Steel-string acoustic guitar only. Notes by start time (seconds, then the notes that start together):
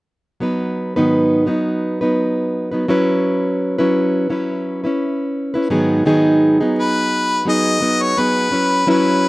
0.40 F#3 B3 D#4 B4
0.96 G#2 D#3 F#3 B3 D#4 B4
1.46 F#3 B3 D#4 B4
2.01 F#3 B3 D#4 B4
2.71 F#3 B3 D#4 B4
2.88 F#3 C#4 E4 B4
3.78 F#3 C#4 E4 B4
4.29 F#3 C#4 E4 B4
4.84 C#4 E4 B4
5.54 C#4 E4 B4
5.70 G#2 D#3 F#3 B3 D#4 G#4
6.05 G#2 D#3 F#3 B3 D#4 G#4
6.60 F#3 B3 D#4 G#4
7.45 F#3 B3 D#4 G#4
7.81 F#3 B3 D#4 G#4
8.17 F#3 B3 D#4 G#4
8.51 F#3 C#4 E4 B4
8.87 F#3 C#4 E4 B4